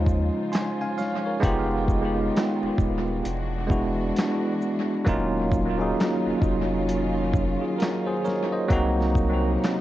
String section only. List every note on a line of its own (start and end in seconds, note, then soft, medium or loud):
0.00 1.39 C#3 medium
0.00 1.39 F3 medium
0.00 3.21 F4 medium
0.00 1.39 C5 medium
1.43 3.23 D#3 medium
1.43 5.03 G#3 medium
1.43 3.23 B3 medium
3.24 5.04 E3 medium
3.24 5.04 D4 medium
3.24 5.04 F#4 medium
5.06 8.66 D#3 medium
5.06 8.66 F#3 medium
5.06 8.66 C#4 medium
5.06 8.66 F4 medium
8.69 9.81 C3 medium
8.69 9.81 F#3 medium
8.69 9.81 A#3 medium
8.69 9.81 D#4 medium